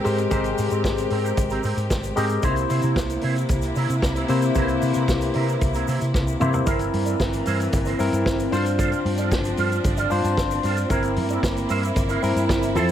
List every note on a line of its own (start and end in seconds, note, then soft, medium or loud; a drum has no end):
0.00 0.04 G#3 medium
0.00 2.40 G#3 medium
0.00 0.23 G#3 medium
0.00 2.40 C4 medium
0.00 0.04 G4 medium
0.00 2.40 G4 medium
0.00 0.05 A#4 medium
0.00 0.05 C5 medium
0.04 0.25 G#2 medium
0.04 0.20 C4 medium
0.04 0.23 G4 medium
0.04 0.18 G4 medium
0.04 0.24 A#4 medium
0.04 0.17 A#4 medium
0.04 0.24 C5 medium
0.04 open hi-hat medium
0.04 shaker soft
0.18 muted clean electric guitar stroke soft
0.18 closed hi-hat soft
0.18 shaker soft
0.30 0.51 G#1 loud
0.30 1.06 G#3 medium
0.30 0.50 C4 medium
0.30 1.06 G4 medium
0.30 0.44 G4 medium
0.30 1.06 A#4 medium
0.30 0.43 A#4 medium
0.30 1.06 C5 medium
0.30 kick loud
0.30 closed hi-hat medium
0.30 shaker medium
0.44 muted clean electric guitar stroke medium
0.44 closed hi-hat soft
0.44 shaker soft
0.57 0.68 G#2 loud
0.57 muted clean electric guitar stroke soft
0.57 open hi-hat medium
0.57 shaker medium
0.70 0.86 G#2 medium
0.70 0.83 C4 soft
0.70 0.84 G4 medium
0.70 0.84 A#4 medium
0.70 closed hi-hat soft
0.70 shaker soft
0.84 1.04 G#1 loud
0.84 kick loud
0.84 snare loud
0.84 shaker medium
0.97 muted clean electric guitar stroke soft
0.97 closed hi-hat soft
0.97 shaker medium
1.10 1.31 G#2 medium
1.10 1.24 C4 medium
1.10 1.23 G4 medium
1.10 1.23 A#4 medium
1.10 open hi-hat medium
1.24 1.36 C4 medium
1.24 1.36 G4 medium
1.24 1.36 A#4 medium
1.24 closed hi-hat soft
1.24 shaker soft
1.37 1.57 G#1 loud
1.37 muted clean electric guitar stroke soft
1.37 kick loud
1.37 closed hi-hat medium
1.37 shaker medium
1.50 1.62 C4 medium
1.50 1.63 G4 medium
1.50 1.64 A#4 medium
1.50 closed hi-hat soft
1.50 shaker soft
1.63 1.74 G#2 medium
1.63 1.79 C4 medium
1.63 1.76 G4 medium
1.63 1.76 A#4 medium
1.63 open hi-hat medium
1.63 shaker soft
1.77 1.87 G#2 medium
1.77 muted clean electric guitar stroke soft
1.77 closed hi-hat soft
1.77 shaker soft
1.90 2.10 G#1 loud
1.90 muted clean electric guitar stroke soft
1.90 kick medium
1.90 snare loud
1.90 shaker medium
2.03 muted clean electric guitar stroke soft
2.03 closed hi-hat soft
2.03 shaker medium
2.16 2.37 G#2 loud
2.16 2.35 G#3 medium
2.16 2.36 C4 medium
2.16 2.35 G4 medium
2.16 2.29 G4 medium
2.16 2.35 A#4 medium
2.16 2.28 A#4 medium
2.16 2.36 D#5 medium
2.16 open hi-hat medium
2.16 shaker medium
2.29 muted clean electric guitar stroke soft
2.29 closed hi-hat soft
2.29 shaker soft
2.42 2.63 C2 loud
2.42 3.18 C3 medium
2.42 6.63 C3 medium
2.42 3.18 A#3 medium
2.42 6.63 A#3 medium
2.42 2.62 C4 medium
2.42 2.50 D#4 medium
2.42 2.56 E4 loud
2.42 6.63 E4 medium
2.42 2.54 A#4 loud
2.42 3.19 C5 medium
2.42 kick loud
2.42 closed hi-hat medium
2.42 shaker medium
2.50 3.22 E4 medium
2.56 muted clean electric guitar stroke soft
2.56 closed hi-hat soft
2.56 shaker soft
2.69 2.80 C3 loud
2.69 2.83 C4 medium
2.69 2.82 E4 medium
2.69 2.82 C5 medium
2.69 open hi-hat medium
2.69 shaker medium
2.82 2.93 C3 medium
2.82 2.99 C4 soft
2.82 2.98 E4 medium
2.82 2.98 A#4 medium
2.82 closed hi-hat soft
2.82 shaker medium
2.96 3.16 C2 medium
2.96 kick medium
2.96 snare loud
2.96 shaker medium
3.09 muted clean electric guitar stroke soft
3.09 closed hi-hat soft
3.09 shaker soft
3.21 3.43 C3 medium
3.21 3.41 C4 medium
3.21 3.36 E4 medium
3.21 3.36 C5 medium
3.21 open hi-hat medium
3.36 muted clean electric guitar stroke soft
3.36 closed hi-hat soft
3.36 shaker medium
3.49 3.69 C2 loud
3.49 kick loud
3.49 closed hi-hat medium
3.49 shaker medium
3.62 muted clean electric guitar stroke soft
3.62 closed hi-hat soft
3.62 shaker soft
3.75 3.86 C3 medium
3.75 3.95 C4 medium
3.75 3.89 E4 medium
3.75 3.88 A#4 medium
3.75 open hi-hat medium
3.75 shaker medium
3.89 3.99 C3 medium
3.89 muted clean electric guitar stroke soft
3.89 closed hi-hat soft
3.89 shaker soft
4.02 4.22 C2 loud
4.02 muted clean electric guitar stroke soft
4.02 kick loud
4.02 snare loud
4.02 shaker medium
4.15 4.27 C4 medium
4.15 4.28 E4 medium
4.15 4.29 A#4 medium
4.15 closed hi-hat soft
4.15 shaker soft
4.28 4.47 C3 medium
4.28 4.49 C3 medium
4.28 4.47 A#3 medium
4.28 4.44 C4 medium
4.28 4.48 E4 medium
4.28 4.42 E4 medium
4.28 4.40 A#4 medium
4.28 4.48 C5 medium
4.28 open hi-hat medium
4.28 shaker medium
4.42 muted clean electric guitar stroke medium
4.42 closed hi-hat soft
4.42 shaker soft
4.54 4.75 C2 loud
4.54 5.30 C3 medium
4.54 5.30 A#3 medium
4.54 4.74 C4 medium
4.54 4.68 E4 medium
4.54 5.30 E4 medium
4.54 4.67 A#4 medium
4.54 4.62 B4 medium
4.54 kick loud
4.54 closed hi-hat medium
4.54 shaker medium
4.62 5.33 C5 medium
4.68 muted clean electric guitar stroke soft
4.68 closed hi-hat soft
4.68 shaker soft
4.81 4.92 C3 medium
4.81 muted clean electric guitar stroke soft
4.81 open hi-hat medium
4.81 shaker medium
4.94 5.05 C3 medium
4.94 5.06 C4 soft
4.94 5.07 E4 medium
4.94 5.07 A#4 medium
4.94 closed hi-hat soft
4.94 shaker soft
5.07 5.28 C2 medium
5.07 muted clean electric guitar stroke soft
5.07 kick loud
5.07 snare loud
5.07 shaker medium
5.20 muted clean electric guitar stroke soft
5.20 closed hi-hat soft
5.20 shaker soft
5.34 5.55 C3 medium
5.34 5.46 C4 medium
5.34 5.46 E4 medium
5.34 5.45 A#4 medium
5.34 open hi-hat medium
5.46 5.60 C4 soft
5.46 5.60 E4 soft
5.46 5.60 A#4 medium
5.46 closed hi-hat soft
5.46 shaker medium
5.61 5.81 C2 loud
5.61 muted clean electric guitar stroke soft
5.61 kick loud
5.61 closed hi-hat medium
5.61 shaker medium
5.74 5.86 C4 medium
5.74 5.87 E4 medium
5.74 5.88 A#4 medium
5.74 closed hi-hat soft
5.74 shaker soft
5.87 5.98 C3 medium
5.87 6.02 C4 medium
5.87 6.00 E4 medium
5.87 5.99 A#4 medium
5.87 open hi-hat medium
5.87 shaker medium
6.00 6.11 C3 medium
6.00 muted clean electric guitar stroke soft
6.00 closed hi-hat soft
6.00 shaker soft
6.13 6.34 C2 medium
6.13 muted clean electric guitar stroke soft
6.13 kick medium
6.13 snare medium
6.13 shaker medium
6.26 muted clean electric guitar stroke soft
6.26 shaker medium
6.39 6.59 C3 medium
6.39 6.61 C3 medium
6.39 6.59 A#3 medium
6.39 6.59 C4 medium
6.39 6.52 E4 medium
6.39 6.59 E4 medium
6.39 6.51 A#4 medium
6.39 6.60 C5 medium
6.39 mid tom medium
6.39 shaker soft
6.52 muted clean electric guitar stroke soft
6.52 floor tom medium
6.52 shaker soft
6.66 6.87 G1 medium
6.66 8.50 E3 medium
6.66 8.50 A#3 medium
6.66 7.41 C4 medium
6.66 12.72 C4 medium
6.66 6.85 E4 medium
6.66 7.42 E4 medium
6.66 6.79 A#4 medium
6.66 7.42 A#4 medium
6.66 6.78 C5 medium
6.66 kick loud
6.66 closed hi-hat medium
6.66 shaker medium
6.79 muted clean electric guitar stroke soft
6.79 closed hi-hat soft
6.79 shaker soft
6.92 7.13 G2 medium
6.92 muted clean electric guitar stroke soft
6.92 open hi-hat medium
7.05 7.18 E4 soft
7.05 7.18 A#4 soft
7.05 7.20 D5 soft
7.05 closed hi-hat soft
7.05 shaker medium
7.19 7.40 G1 medium
7.19 muted clean electric guitar stroke soft
7.19 kick loud
7.19 snare loud
7.19 shaker medium
7.33 muted clean electric guitar stroke medium
7.33 closed hi-hat soft
7.33 shaker soft
7.45 7.66 G2 medium
7.45 7.65 E4 medium
7.45 7.59 A#4 medium
7.45 7.58 C5 medium
7.45 open hi-hat medium
7.45 shaker soft
7.59 muted clean electric guitar stroke soft
7.59 closed hi-hat soft
7.59 shaker medium
7.72 7.93 G1 loud
7.72 muted clean electric guitar stroke soft
7.72 kick loud
7.72 closed hi-hat medium
7.72 shaker medium
7.85 7.98 E4 medium
7.85 7.99 A#4 medium
7.85 7.99 C5 medium
7.85 closed hi-hat soft
7.85 shaker soft
7.99 8.09 G2 medium
7.99 8.52 C4 medium
7.99 8.52 E4 medium
7.99 8.53 A#4 medium
7.99 muted clean electric guitar stroke soft
7.99 open hi-hat medium
7.99 shaker medium
8.12 8.23 G2 medium
8.12 muted clean electric guitar stroke soft
8.12 closed hi-hat soft
8.12 shaker medium
8.26 8.46 G1 medium
8.26 kick loud
8.26 snare loud
8.26 shaker medium
8.39 muted clean electric guitar stroke soft
8.39 closed hi-hat soft
8.39 shaker medium
8.51 8.92 G2 medium
8.51 10.88 F3 medium
8.51 9.37 D4 medium
8.51 10.88 D4 medium
8.51 8.71 F4 medium
8.51 9.37 F4 medium
8.51 8.65 A4 medium
8.51 9.37 C5 loud
8.51 8.64 C5 medium
8.51 open hi-hat medium
8.51 shaker medium
8.65 muted clean electric guitar stroke soft
8.65 closed hi-hat soft
8.65 shaker soft
8.78 8.98 F4 medium
8.78 8.92 A4 medium
8.78 8.90 C5 medium
8.78 kick loud
8.78 closed hi-hat medium
8.78 shaker medium
8.91 muted clean electric guitar stroke medium
8.91 closed hi-hat soft
8.91 shaker soft
9.05 9.33 G2 loud
9.05 muted clean electric guitar stroke soft
9.05 open hi-hat medium
9.18 9.30 F4 soft
9.18 9.30 A4 medium
9.18 9.31 D5 medium
9.18 closed hi-hat soft
9.18 shaker medium
9.31 9.52 G1 medium
9.31 muted clean electric guitar stroke soft
9.31 kick loud
9.31 snare loud
9.31 shaker medium
9.44 muted clean electric guitar stroke soft
9.44 closed hi-hat soft
9.44 shaker medium
9.57 9.78 G2 medium
9.57 9.77 F4 medium
9.57 9.71 A4 medium
9.57 9.70 C5 medium
9.57 open hi-hat medium
9.57 shaker soft
9.71 muted clean electric guitar stroke soft
9.71 closed hi-hat soft
9.71 shaker soft
9.84 10.05 G1 loud
9.84 muted clean electric guitar stroke soft
9.84 kick loud
9.84 closed hi-hat medium
9.84 shaker medium
9.97 10.10 F4 medium
9.97 10.11 A4 medium
9.97 10.12 D5 medium
9.97 closed hi-hat soft
9.97 shaker soft
10.10 10.21 G2 medium
10.10 10.67 D4 medium
10.10 10.67 F4 medium
10.10 10.67 C5 loud
10.10 open hi-hat medium
10.10 shaker soft
10.24 10.34 G2 loud
10.24 muted clean electric guitar stroke soft
10.24 closed hi-hat soft
10.24 shaker soft
10.37 10.58 G1 loud
10.37 kick loud
10.37 snare loud
10.37 shaker medium
10.51 muted clean electric guitar stroke soft
10.51 closed hi-hat soft
10.51 shaker medium
10.63 10.84 G2 medium
10.63 10.83 F4 medium
10.63 10.78 A4 medium
10.63 10.76 C5 medium
10.63 open hi-hat medium
10.63 shaker soft
10.77 muted clean electric guitar stroke medium
10.77 closed hi-hat soft
10.77 shaker medium
10.89 11.18 G1 loud
10.89 12.74 A#3 medium
10.89 11.65 C4 medium
10.89 11.65 E4 medium
10.89 12.92 E4 medium
10.89 11.10 E4 medium
10.89 11.66 A#4 medium
10.89 11.03 A#4 medium
10.89 11.02 C5 loud
10.89 kick loud
10.89 closed hi-hat medium
10.89 shaker medium
11.03 muted clean electric guitar stroke soft
11.03 closed hi-hat soft
11.03 shaker soft
11.16 11.37 G2 loud
11.16 muted clean electric guitar stroke soft
11.16 open hi-hat medium
11.29 11.41 E4 soft
11.29 11.42 A#4 medium
11.29 11.43 D5 soft
11.29 closed hi-hat soft
11.29 shaker medium
11.43 11.63 G1 loud
11.43 muted clean electric guitar stroke soft
11.43 kick loud
11.43 snare loud
11.43 shaker medium
11.56 muted clean electric guitar stroke soft
11.56 closed hi-hat soft
11.56 shaker medium
11.69 11.90 G2 medium
11.69 11.89 E4 medium
11.69 11.82 A#4 medium
11.69 11.81 C5 loud
11.69 open hi-hat medium
11.69 shaker medium
11.83 muted clean electric guitar stroke soft
11.83 closed hi-hat soft
11.83 shaker medium
11.96 12.16 G1 loud
11.96 muted clean electric guitar stroke soft
11.96 kick loud
11.96 closed hi-hat medium
11.96 shaker medium
12.09 12.21 E4 medium
12.09 12.21 A#4 medium
12.09 12.22 C5 medium
12.09 closed hi-hat soft
12.09 shaker soft
12.22 12.33 G2 medium
12.22 12.74 C4 medium
12.22 12.75 E4 medium
12.22 12.76 A#4 medium
12.22 open hi-hat medium
12.22 shaker medium
12.36 12.46 G2 medium
12.36 muted clean electric guitar stroke soft
12.36 closed hi-hat soft
12.36 shaker medium
12.49 12.77 G1 medium
12.49 kick loud
12.49 snare loud
12.49 shaker medium
12.61 muted clean electric guitar stroke soft
12.61 closed hi-hat soft
12.61 shaker medium
12.74 12.92 F2 loud
12.74 12.92 F3 medium
12.74 12.92 C4 medium
12.74 12.92 E4 medium
12.74 12.92 A4 medium
12.74 12.88 A4 medium
12.74 12.92 A4 loud
12.74 12.87 C5 loud
12.74 open hi-hat medium
12.74 shaker medium
12.88 muted clean electric guitar stroke soft